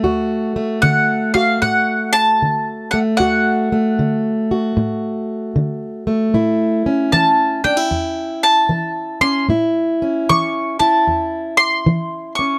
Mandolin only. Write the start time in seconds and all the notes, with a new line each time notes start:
0.82 F#5
1.34 F5
1.62 F#5
2.13 A5
2.91 F#5
3.17 F#5
7.12 A5
7.64 G5
8.43 A5
9.21 C6
10.29 C#6
10.79 A5
11.57 C6
12.35 C#6